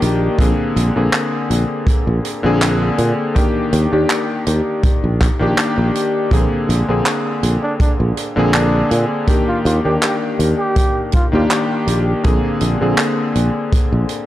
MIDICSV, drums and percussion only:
0, 0, Header, 1, 2, 480
1, 0, Start_track
1, 0, Key_signature, -3, "major"
1, 0, Tempo, 740741
1, 254, Time_signature, 4, 2, 24, 8
1, 9240, End_track
2, 0, Start_track
2, 0, Title_t, "Drums"
2, 13, Note_on_c, 9, 42, 71
2, 78, Note_off_c, 9, 42, 0
2, 250, Note_on_c, 9, 36, 103
2, 258, Note_on_c, 9, 42, 86
2, 314, Note_off_c, 9, 36, 0
2, 323, Note_off_c, 9, 42, 0
2, 497, Note_on_c, 9, 42, 75
2, 562, Note_off_c, 9, 42, 0
2, 733, Note_on_c, 9, 39, 104
2, 735, Note_on_c, 9, 42, 76
2, 798, Note_off_c, 9, 39, 0
2, 800, Note_off_c, 9, 42, 0
2, 976, Note_on_c, 9, 42, 78
2, 1041, Note_off_c, 9, 42, 0
2, 1210, Note_on_c, 9, 36, 114
2, 1216, Note_on_c, 9, 42, 85
2, 1275, Note_off_c, 9, 36, 0
2, 1281, Note_off_c, 9, 42, 0
2, 1456, Note_on_c, 9, 42, 76
2, 1521, Note_off_c, 9, 42, 0
2, 1694, Note_on_c, 9, 42, 81
2, 1697, Note_on_c, 9, 39, 105
2, 1759, Note_off_c, 9, 42, 0
2, 1762, Note_off_c, 9, 39, 0
2, 1933, Note_on_c, 9, 42, 68
2, 1998, Note_off_c, 9, 42, 0
2, 2177, Note_on_c, 9, 42, 80
2, 2178, Note_on_c, 9, 36, 102
2, 2241, Note_off_c, 9, 42, 0
2, 2242, Note_off_c, 9, 36, 0
2, 2415, Note_on_c, 9, 42, 82
2, 2480, Note_off_c, 9, 42, 0
2, 2653, Note_on_c, 9, 42, 94
2, 2655, Note_on_c, 9, 39, 107
2, 2718, Note_off_c, 9, 42, 0
2, 2720, Note_off_c, 9, 39, 0
2, 2894, Note_on_c, 9, 42, 75
2, 2958, Note_off_c, 9, 42, 0
2, 3131, Note_on_c, 9, 42, 73
2, 3133, Note_on_c, 9, 36, 124
2, 3196, Note_off_c, 9, 42, 0
2, 3197, Note_off_c, 9, 36, 0
2, 3373, Note_on_c, 9, 42, 78
2, 3375, Note_on_c, 9, 36, 95
2, 3378, Note_on_c, 9, 39, 51
2, 3438, Note_off_c, 9, 42, 0
2, 3440, Note_off_c, 9, 36, 0
2, 3443, Note_off_c, 9, 39, 0
2, 3615, Note_on_c, 9, 42, 86
2, 3616, Note_on_c, 9, 39, 110
2, 3680, Note_off_c, 9, 42, 0
2, 3681, Note_off_c, 9, 39, 0
2, 3858, Note_on_c, 9, 42, 76
2, 3923, Note_off_c, 9, 42, 0
2, 4091, Note_on_c, 9, 36, 111
2, 4098, Note_on_c, 9, 42, 85
2, 4156, Note_off_c, 9, 36, 0
2, 4163, Note_off_c, 9, 42, 0
2, 4340, Note_on_c, 9, 42, 76
2, 4404, Note_off_c, 9, 42, 0
2, 4574, Note_on_c, 9, 39, 122
2, 4577, Note_on_c, 9, 42, 82
2, 4639, Note_off_c, 9, 39, 0
2, 4642, Note_off_c, 9, 42, 0
2, 4816, Note_on_c, 9, 42, 76
2, 4880, Note_off_c, 9, 42, 0
2, 5054, Note_on_c, 9, 36, 118
2, 5058, Note_on_c, 9, 42, 80
2, 5118, Note_off_c, 9, 36, 0
2, 5122, Note_off_c, 9, 42, 0
2, 5295, Note_on_c, 9, 42, 81
2, 5360, Note_off_c, 9, 42, 0
2, 5533, Note_on_c, 9, 42, 89
2, 5534, Note_on_c, 9, 39, 119
2, 5598, Note_off_c, 9, 39, 0
2, 5598, Note_off_c, 9, 42, 0
2, 5774, Note_on_c, 9, 42, 76
2, 5839, Note_off_c, 9, 42, 0
2, 6011, Note_on_c, 9, 36, 110
2, 6011, Note_on_c, 9, 42, 83
2, 6076, Note_off_c, 9, 36, 0
2, 6076, Note_off_c, 9, 42, 0
2, 6259, Note_on_c, 9, 42, 72
2, 6324, Note_off_c, 9, 42, 0
2, 6497, Note_on_c, 9, 39, 120
2, 6497, Note_on_c, 9, 42, 83
2, 6562, Note_off_c, 9, 39, 0
2, 6562, Note_off_c, 9, 42, 0
2, 6738, Note_on_c, 9, 42, 69
2, 6802, Note_off_c, 9, 42, 0
2, 6972, Note_on_c, 9, 42, 91
2, 6974, Note_on_c, 9, 36, 113
2, 7037, Note_off_c, 9, 42, 0
2, 7039, Note_off_c, 9, 36, 0
2, 7206, Note_on_c, 9, 42, 73
2, 7216, Note_on_c, 9, 36, 112
2, 7271, Note_off_c, 9, 42, 0
2, 7281, Note_off_c, 9, 36, 0
2, 7454, Note_on_c, 9, 42, 88
2, 7457, Note_on_c, 9, 39, 114
2, 7519, Note_off_c, 9, 42, 0
2, 7522, Note_off_c, 9, 39, 0
2, 7695, Note_on_c, 9, 42, 85
2, 7760, Note_off_c, 9, 42, 0
2, 7933, Note_on_c, 9, 42, 81
2, 7937, Note_on_c, 9, 36, 120
2, 7998, Note_off_c, 9, 42, 0
2, 8002, Note_off_c, 9, 36, 0
2, 8169, Note_on_c, 9, 42, 77
2, 8233, Note_off_c, 9, 42, 0
2, 8411, Note_on_c, 9, 39, 119
2, 8416, Note_on_c, 9, 42, 94
2, 8475, Note_off_c, 9, 39, 0
2, 8481, Note_off_c, 9, 42, 0
2, 8654, Note_on_c, 9, 42, 75
2, 8719, Note_off_c, 9, 42, 0
2, 8894, Note_on_c, 9, 36, 125
2, 8896, Note_on_c, 9, 42, 87
2, 8959, Note_off_c, 9, 36, 0
2, 8960, Note_off_c, 9, 42, 0
2, 9130, Note_on_c, 9, 42, 72
2, 9194, Note_off_c, 9, 42, 0
2, 9240, End_track
0, 0, End_of_file